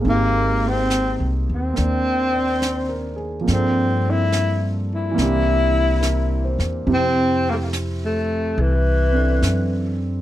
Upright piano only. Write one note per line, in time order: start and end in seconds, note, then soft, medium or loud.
0.00 3.44 G#3 soft
0.00 1.72 A#3 soft
0.00 3.45 C4 soft
0.07 3.48 D#4 soft
0.07 3.49 G4 soft
1.74 3.42 A#3 soft
1.74 3.47 D4 soft
2.33 2.77 D5 soft
2.61 3.14 C5 soft
2.89 3.34 A#4 soft
3.16 3.61 G#4 soft
3.41 5.14 F3 soft
3.41 5.13 A#3 soft
3.47 5.15 C4 soft
3.47 5.18 D4 soft
3.52 5.20 A4 soft
5.11 6.84 E3 soft
5.11 6.86 A#3 soft
5.16 6.86 C4 soft
5.16 6.88 D4 soft
5.22 6.87 G4 medium
6.01 6.68 A#4 soft
6.45 7.04 C5 soft
6.87 10.22 C3 soft
6.87 9.11 C4 soft
6.87 10.22 E4 soft
6.87 10.22 G4 soft
9.12 10.22 C4 soft
9.12 10.22 D4 soft
9.12 10.22 A4 soft